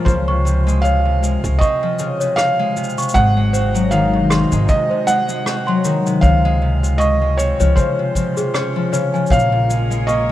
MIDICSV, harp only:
0, 0, Header, 1, 2, 480
1, 0, Start_track
1, 0, Key_signature, -5, "major"
1, 0, Tempo, 769231
1, 45, Time_signature, 4, 2, 24, 8
1, 6438, End_track
2, 0, Start_track
2, 0, Title_t, "Harp"
2, 0, Program_c, 0, 46
2, 0, Note_on_c, 0, 46, 71
2, 0, Note_on_c, 0, 53, 106
2, 0, Note_on_c, 0, 56, 75
2, 0, Note_on_c, 0, 58, 81
2, 41, Note_on_c, 0, 49, 102
2, 76, Note_off_c, 0, 46, 0
2, 76, Note_off_c, 0, 53, 0
2, 76, Note_off_c, 0, 56, 0
2, 173, Note_on_c, 0, 48, 74
2, 196, Note_off_c, 0, 49, 0
2, 273, Note_off_c, 0, 48, 0
2, 280, Note_on_c, 0, 48, 75
2, 416, Note_on_c, 0, 56, 99
2, 515, Note_off_c, 0, 48, 0
2, 522, Note_on_c, 0, 48, 78
2, 649, Note_off_c, 0, 48, 0
2, 657, Note_on_c, 0, 48, 69
2, 755, Note_off_c, 0, 56, 0
2, 763, Note_on_c, 0, 56, 71
2, 889, Note_off_c, 0, 56, 0
2, 897, Note_on_c, 0, 56, 71
2, 1005, Note_on_c, 0, 60, 86
2, 1140, Note_on_c, 0, 53, 86
2, 1245, Note_on_c, 0, 49, 98
2, 1276, Note_off_c, 0, 48, 0
2, 1276, Note_off_c, 0, 53, 0
2, 1282, Note_off_c, 0, 60, 0
2, 1378, Note_on_c, 0, 48, 78
2, 1396, Note_off_c, 0, 49, 0
2, 1474, Note_off_c, 0, 48, 0
2, 1482, Note_on_c, 0, 48, 85
2, 1610, Note_off_c, 0, 56, 0
2, 1618, Note_on_c, 0, 56, 102
2, 1718, Note_off_c, 0, 48, 0
2, 1726, Note_on_c, 0, 48, 81
2, 1805, Note_off_c, 0, 58, 0
2, 1849, Note_off_c, 0, 48, 0
2, 1857, Note_on_c, 0, 48, 79
2, 1956, Note_off_c, 0, 56, 0
2, 1963, Note_on_c, 0, 56, 81
2, 1996, Note_off_c, 0, 48, 0
2, 2094, Note_off_c, 0, 56, 0
2, 2101, Note_on_c, 0, 56, 78
2, 2203, Note_on_c, 0, 60, 76
2, 2336, Note_on_c, 0, 54, 91
2, 2445, Note_on_c, 0, 51, 110
2, 2476, Note_off_c, 0, 54, 0
2, 2476, Note_off_c, 0, 56, 0
2, 2580, Note_on_c, 0, 48, 64
2, 2596, Note_off_c, 0, 51, 0
2, 2678, Note_off_c, 0, 48, 0
2, 2686, Note_on_c, 0, 48, 71
2, 2821, Note_on_c, 0, 56, 92
2, 2918, Note_off_c, 0, 48, 0
2, 2925, Note_on_c, 0, 48, 81
2, 3055, Note_off_c, 0, 48, 0
2, 3063, Note_on_c, 0, 48, 68
2, 3164, Note_off_c, 0, 56, 0
2, 3172, Note_on_c, 0, 56, 75
2, 3297, Note_off_c, 0, 56, 0
2, 3305, Note_on_c, 0, 56, 74
2, 3406, Note_off_c, 0, 60, 0
2, 3409, Note_on_c, 0, 60, 87
2, 3543, Note_on_c, 0, 54, 106
2, 3648, Note_on_c, 0, 51, 105
2, 3676, Note_off_c, 0, 48, 0
2, 3676, Note_off_c, 0, 54, 0
2, 3676, Note_off_c, 0, 56, 0
2, 3785, Note_on_c, 0, 48, 83
2, 3796, Note_off_c, 0, 51, 0
2, 3882, Note_off_c, 0, 48, 0
2, 3889, Note_on_c, 0, 48, 82
2, 4024, Note_on_c, 0, 56, 99
2, 4122, Note_off_c, 0, 48, 0
2, 4129, Note_on_c, 0, 48, 79
2, 4255, Note_off_c, 0, 48, 0
2, 4262, Note_on_c, 0, 48, 67
2, 4361, Note_off_c, 0, 56, 0
2, 4368, Note_on_c, 0, 56, 79
2, 4495, Note_off_c, 0, 56, 0
2, 4502, Note_on_c, 0, 56, 71
2, 4607, Note_off_c, 0, 60, 0
2, 4609, Note_on_c, 0, 60, 78
2, 4740, Note_on_c, 0, 53, 92
2, 4848, Note_on_c, 0, 49, 99
2, 4876, Note_off_c, 0, 48, 0
2, 4876, Note_off_c, 0, 53, 0
2, 4885, Note_off_c, 0, 60, 0
2, 4986, Note_on_c, 0, 48, 68
2, 4996, Note_off_c, 0, 49, 0
2, 5089, Note_on_c, 0, 53, 73
2, 5217, Note_off_c, 0, 48, 0
2, 5224, Note_on_c, 0, 48, 69
2, 5236, Note_off_c, 0, 53, 0
2, 5327, Note_on_c, 0, 61, 85
2, 5466, Note_on_c, 0, 53, 92
2, 5570, Note_on_c, 0, 49, 102
2, 5596, Note_off_c, 0, 48, 0
2, 5596, Note_off_c, 0, 53, 0
2, 5703, Note_on_c, 0, 53, 78
2, 5805, Note_on_c, 0, 46, 80
2, 5836, Note_off_c, 0, 49, 0
2, 5836, Note_off_c, 0, 53, 0
2, 5836, Note_off_c, 0, 56, 0
2, 5934, Note_off_c, 0, 46, 0
2, 5942, Note_on_c, 0, 46, 72
2, 6050, Note_on_c, 0, 56, 73
2, 6173, Note_off_c, 0, 56, 0
2, 6180, Note_on_c, 0, 56, 73
2, 6289, Note_on_c, 0, 58, 83
2, 6438, Note_off_c, 0, 46, 0
2, 6438, Note_off_c, 0, 56, 0
2, 6438, Note_off_c, 0, 58, 0
2, 6438, Note_off_c, 0, 61, 0
2, 6438, End_track
0, 0, End_of_file